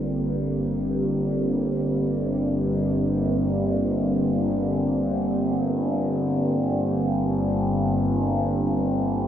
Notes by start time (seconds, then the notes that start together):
Already playing: G1 G2 D3 G3 A#3 C4
8.52 G2
9.10 F3